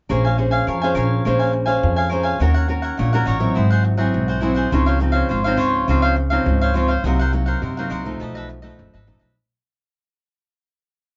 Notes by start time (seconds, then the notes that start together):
0.09 A#1 A#3 C#4 G#4 A#4 C5 C#5 F5 G#5
0.24 C#5 F5 G#5
0.38 C#4 G#4 C5, muted cavaquinho stroke
0.51 C#5 F5 G#5
0.67 F2 F3 A#4 C#5 F5 G#5
0.82 C#4 G#4 C5 C#5 F5 G#5
0.95 A#1 A#4 C#5 F5 G#5
1.25 A#1 A#3 C#4 G#4 A#4 C5 C#5 F5 G#5
1.39 C#5 F5 G#5
1.52 muted cavaquinho stroke
1.66 C#4 G#4 C5 C#5 F5 G#5
1.83 F2 F3
1.96 C#5 F5 G#5
2.09 C#4 G#4 A#4 C5 C#5 F5 G#5
2.23 C#5 F5 G#5
2.39 D#2 D#3 C#4 D#4 F#4 A#4 C#5 F#5
2.54 A#4 C#5 F#5
2.68 C#4 F#4 A#4, muted cavaquinho stroke
2.82 A#4 C#5 F#5
2.97 A#1 A#2 D#4 A#4 C#5 F#5
3.13 C#4 F#4 A#4 C#5 F#5
3.25 A1 D#4 A#4 C#5 F#5
3.40 F#3 C4 E4
3.55 G#1 G#2 E4 G#4 C5 F#5
3.70 G#4 C5 F#5
3.84 muted cavaquinho stroke
3.97 F#3 C4 E4 G#4 C5 F#5
4.14 B1 G#2
4.28 G#4 C5 F#5
4.41 F#3 C4 E4 G#4 C5 F#5
4.55 G#4 C5 F#5
4.71 C#2 C#3 F3 C4 D#4 F4 C5 C#5 F5
4.86 C5 C#5 F5
5.00 F3 C4 D#4, muted cavaquinho stroke
5.12 C5 C#5 F5
5.29 G#1 G#2 F4 C5 C#5 F5
5.44 F3 C4 D#4 C5 C#5 F5
5.57 C#2 F4 C5 C#5 F5
5.88 C#2 C#3 F3 C4 D#4 F4 C5 C#5 F5
6.02 C5 C#5 F5
6.16 muted cavaquinho stroke
6.30 F3 C4 D#4 C5 C#5 F5
6.46 C#2 G#2
6.61 C5 C#5 F5
6.74 F3 C4 D#4 F4 C5 C#5 F5
6.88 C5 C#5 F5
7.04 C2 C3 F#3 A#3 D#4 A#4 C5 F#5
7.19 A#4 C5 F#5
7.32 F#3 A#3 D#4, muted cavaquinho stroke
7.46 A#4 C5 F#5
7.62 F#2 C3 D#4 A#4 C5 F#5
7.77 F#3 A#3 D#4 A#4 C5 F#5
7.90 C2 D#4 A#4 C5 F#5
8.05 F3 A3 D#4
8.20 B1 B2 D#4 A4 B4 D#5
8.35 A4 B4 D#5
8.49 muted cavaquinho stroke
8.62 F3 A3 D#4 A4 B4 D#5
8.79 F#1 F#2
8.93 G#1 A4 B4 D#5
9.07 A1 F3 A3 D#4 A4 B4 D#5
9.19 B1 A4 B4 D#5